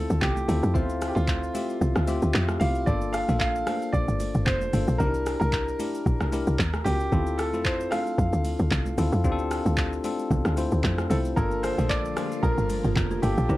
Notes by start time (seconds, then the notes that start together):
Already playing: C4 E4 F4 A4
0.10 D2, shaker
0.21 C2 G4, kick, clap, low conga, shaker
0.36 high conga, shaker
0.48 D2 C4 E4 F4 A4, open hi-hat, high conga, low conga, shaker
0.63 F2, shaker
0.74 D2 C4 F4 C5 E5, kick, low conga, shaker
0.89 shaker
1.02 cross-stick, open hi-hat, shaker
1.08 G4
1.15 D2 F4, high conga, shaker
1.28 kick, clap, shaker
1.43 shaker
1.54 C4 F4 G4 E5, open hi-hat, high conga, shaker
1.70 shaker
1.81 C2, low conga, shaker
1.95 D2, cross-stick, high conga, shaker
2.07 C4 F4 G4 E5, open hi-hat, high conga, shaker
2.22 D2, shaker
2.34 F2, clap, low conga, shaker
2.48 cross-stick, high conga, shaker
2.60 C2 C4 E4 F4 G4 F5, open hi-hat, high conga, low conga, shaker
2.75 shaker
2.86 G1 A#3 D4 F4 A4 D5, kick, low conga, shaker
3.01 shaker
3.13 F5, cross-stick, open hi-hat, shaker
3.28 A#1 A#3 D4 F4 A4, high conga, shaker
3.39 F5, kick, clap, shaker
3.56 shaker
3.67 A#3 D4 F4 C5, cross-stick, open hi-hat, high conga, shaker
3.82 shaker
3.93 A#1 D5, kick, shaker
4.08 G1, high conga, shaker
4.20 open hi-hat, high conga, shaker
4.34 G1, shaker
4.45 F1 C5, kick, clap, low conga, shaker
4.61 high conga, shaker
4.73 G1 A#3 D4 F4 A4, open hi-hat, high conga, low conga, shaker
4.88 A#1, shaker
4.98 C2 D4 D#4 G4 A#4, kick, low conga, shaker
5.06 E4
5.14 shaker
5.26 cross-stick, open hi-hat, shaker
5.40 C2 A#4, high conga, shaker
5.53 kick, clap, shaker
5.68 shaker
5.79 D4 E4 G4 A#4, open hi-hat, high conga, shaker
5.95 shaker
6.06 A#1, kick, shaker
6.20 C2, cross-stick, high conga, shaker
6.32 D4 E4 G4 A#4, open hi-hat, high conga, shaker
6.47 C2, shaker
6.59 D#2, kick, clap, low conga, shaker
6.73 cross-stick, high conga, shaker
6.84 C#2 C#4 F4 F#4 G4 A#4, open hi-hat, high conga, low conga, shaker
7.00 shaker
7.12 D2 C4 E4 F4 A4, kick, low conga, shaker
7.26 shaker
7.38 A4, cross-stick, open hi-hat, shaker
7.53 F2 C4 E4 F4 A4, high conga, shaker
7.64 C5, kick, clap, shaker
7.80 shaker
7.91 C4 D4 F4 A4 F5, cross-stick, open hi-hat, high conga, shaker
8.07 shaker
8.18 F2, kick, shaker
8.32 D2, high conga, shaker
8.45 open hi-hat, high conga, shaker
8.59 D2, shaker
8.71 C2, kick, clap, low conga, shaker
8.85 high conga, shaker
8.98 D2 C4 E4 F4 A4, open hi-hat, high conga, low conga, shaker
9.12 F2, shaker
9.24 D2 C4 D4 F4 G4, kick, low conga, shaker
9.32 A4
9.39 shaker
9.51 cross-stick, open hi-hat, shaker
9.66 D2, high conga, shaker
9.77 kick, clap, shaker
9.93 shaker
10.04 C4 D4 F4 A4, open hi-hat, high conga, shaker
10.19 shaker
10.31 C2, kick, low conga, shaker
10.45 D2, cross-stick, high conga, shaker
10.57 C4 E4 F4 C5, open hi-hat, high conga, shaker
10.71 D2, shaker
10.84 F2, kick, clap, low conga, shaker
10.98 cross-stick, high conga, shaker
11.10 C2 C4 E4 F4 A4 C5, open hi-hat, high conga, low conga, shaker
11.25 shaker
11.36 G1 D3 F3 G3 A#3 D4 F4 G4 A4 A#4, kick, low conga, shaker
11.51 shaker
11.63 C5, cross-stick, open hi-hat, shaker
11.78 A#1 A#3 D4 F4 G4 A4 A#4, high conga, shaker
11.89 D5, kick, clap, shaker
12.05 shaker
12.16 A#3 D4 F4 G4 A#4 C5, cross-stick, open hi-hat, high conga, shaker
12.32 shaker
12.43 A#1 F4 G4 A#4, kick, shaker
12.58 G1, high conga, shaker
12.70 open hi-hat, high conga, shaker
12.84 G1 F4 G4 A#4, shaker
12.96 F1, kick, clap, low conga, shaker
13.11 F4 G4 A#4, high conga, shaker
13.22 G1 A#3 D4 F4 G4 A4, open hi-hat, high conga, low conga, shaker
13.37 A#1, shaker
13.49 C2 C3 E3 D4 E4 G4 A#4 C5, kick, low conga, shaker